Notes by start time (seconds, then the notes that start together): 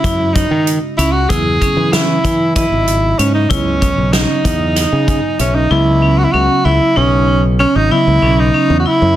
Already playing: C#3 G#3 C#4 E4 F#4
0.04 F#2 E4, kick, closed hi-hat
0.33 D#4, kick, closed hi-hat
0.51 D#3
0.67 closed hi-hat
0.97 C#2 C#4 E4, closed hi-hat
1.12 F#4
1.29 E2 C#3 F#3 B3 E4 G#4, kick, closed hi-hat
1.61 C#4, kick, closed hi-hat
1.77 E3
1.92 C#4 E4, snare, closed hi-hat
2.24 E3 E4, kick, closed hi-hat
2.56 E4 D#5, kick, closed hi-hat
2.72 G#1
2.88 closed hi-hat
3.19 G#2 C#4, closed hi-hat
3.34 D#4
3.49 C#2 C#3 F#3 B3 C#4 E4 D#5, kick, closed hi-hat
3.81 C#4, kick, closed hi-hat
3.98 B1
4.13 C#4 D#4, snare, closed hi-hat
4.44 E2 D#4, kick, closed hi-hat
4.76 D#4, snare, closed hi-hat
4.92 C#3
5.08 G#5, kick, closed hi-hat
5.39 B1 C#4 E5, closed hi-hat
5.55 D#4
5.70 C#2 C#3 F#3 B3 E4 D#5
6.02 C#4
6.18 F#4
6.24 E4
6.32 C#2 C#4 F#4
6.65 C#2 E4
6.96 B1 C#4 D#4
7.59 C#4
7.76 G#1 D#4
7.91 C#3 F#3 B3 E4 D#5
8.07 C#2
8.22 B1 C#4
8.40 D#4
8.54 C#4
8.70 E2
8.79 F#4
8.86 E4
9.02 F#2